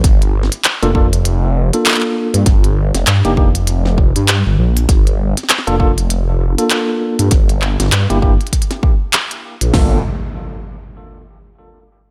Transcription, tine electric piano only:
X:1
M:4/4
L:1/16
Q:"Swing 16ths" 1/4=99
K:Gm
V:1 name="Tine electric piano"
z4 z [B,DFA] [B,DFA] z4 [B,DFA]4- [B,DFA] | z4 z [B,DEG] [B,DEG] z8 z | z4 z [B,DFA] [B,DFA] z4 [B,DFA]4- [B,DFA] | z4 z [B,D=EG] [B,DEG] z8 z |
[B,DFA]2 z12 z2 |]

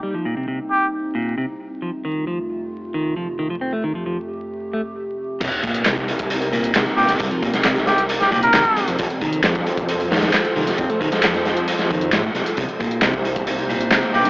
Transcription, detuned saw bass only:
X:1
M:4/4
L:1/16
Q:1/4=134
K:Cdor
V:1 name="Detuned saw bass" clef=bass
z16 | z16 | z16 | C,, z3 C,,8 z2 G,,,2 |
C,, z2 C,, C,,8 E,, z2 F,, | F,, z3 F,,8 z2 C,,2 | F,, z2 F,, F,,8 A,,2 C,, z | C,, z3 C,,8 z2 G,,,2 |]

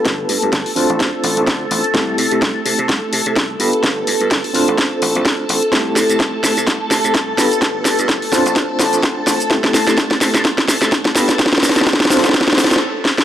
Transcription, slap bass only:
X:1
M:4/4
L:1/16
Q:"Swing 16ths" 1/4=127
K:C
V:1 name="Slap bass" clef=bass
G,,, z G,, G,, G,,, z D,, A,,, D,, z A,,, A,,, D,, z A,,, z | C,, z C, C, C,, z C, C, C,, z C, C, C,, z G,, z | G,,, z G,, G,, G,,, z D,, A,,, z2 A,,, A,,, D,, z A,,, z | C,, z C, C, C,, z C, C, C,, z C, C, C,, z G,, z |
G,,, z G,, G,, G,,, z D,, A,,, z2 A,,, A,,, D,, z A,,, z | C,, z C, C, C,, z C, C, C,, z C, C, C,, z G,, z | G,,, z G,, G,, G,,, z D,, A,,, z2 A,,, A,,, z4 |]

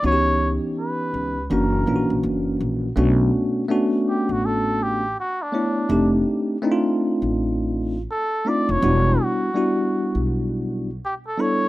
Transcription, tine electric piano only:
X:1
M:4/4
L:1/16
Q:"Swing 16ths" 1/4=82
K:Bm
V:1 name="Tine electric piano"
[E,B,C^DFG]6- [E,B,CDFG] z [E,^A,C=DF]2 [E,A,CD^EF]6 | [A,B,CDF]4 [A,B,CDF]6- [A,B,CDF] z3 [A,B,DEc]2 | [A,=CD_EG]4 [A,CDE=E=F]6- [A,CD_E=EF] z3 [A,CD_EF]2 | [G,B,DEF]4 [G,B,DEF]6- [G,B,DEF] z3 [G,B,DEA]2 |]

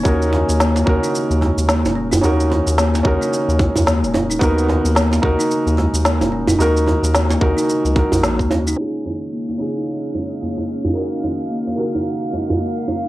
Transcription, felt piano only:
X:1
M:4/4
L:1/8
Q:"Swing 16ths" 1/4=110
K:Ebm
V:1 name="Felt piano"
[DEGB]3 [DEGB]4- [DEGB] | [DEGB]3 [DEGB]4- [DEGB] | [CEGB]3 [EGB]4- [EGB] | [EGB]3 [EGB]2 [EGB]3 |
[DEFA]3 [DEFA]4- [DEFA] | [B,EGB]3 [B,EGB]4- [B,EGB] |]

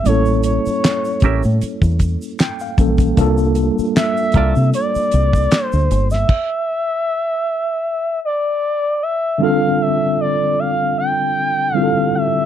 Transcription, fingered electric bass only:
X:1
M:4/4
L:1/16
Q:"Swing 16ths" 1/4=77
K:Dm
V:1 name="Fingered electric bass" clef=bass
A,,,3 z3 A,,, A,, z E,,2 z3 B,,,2 | C,,3 z3 C,, C, z2 C,,2 z D,, G,,,2 | z16 | z16 |]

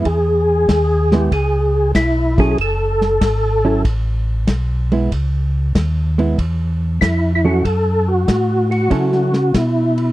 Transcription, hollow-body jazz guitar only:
X:1
M:4/4
L:1/8
Q:"Swing" 1/4=95
K:C#m
V:1 name="Hollow-body jazz guitar"
z3 [G,B,E] z3 [F,CEA] | z3 [F,CEA] z3 [G,B,E] | z3 [G,B,E] z3 [F,CEA] | z4 [F,CEA] z3 |]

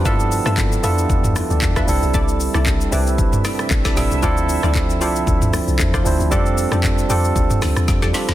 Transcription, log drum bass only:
X:1
M:4/4
L:1/16
Q:"Swing 16ths" 1/4=115
K:C
V:1 name="Log drum bass" clef=bass
G,,3 G,,3 F,,2 E,,3 D,, E,,2 C,, C,, | C,,3 C,,3 C,,4 z2 A,,,2 A,,, C,, | D,,3 D,,3 C,,2 D,,3 C,, E,,2 D,, D,, | F,,3 F,,3 F,,2 D,, z D,, E,, F,, E,, z D,, |]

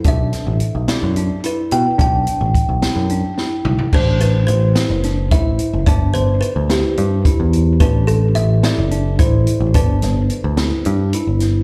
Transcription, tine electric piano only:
X:1
M:7/8
L:1/8
Q:1/4=108
K:Ador
V:1 name="Tine electric piano"
D2 z E D E2 | D2 z E D E2 | D2 z E D E2 | D2 z E D E2 |
D2 z E D E2 | D2 z E D E2 |]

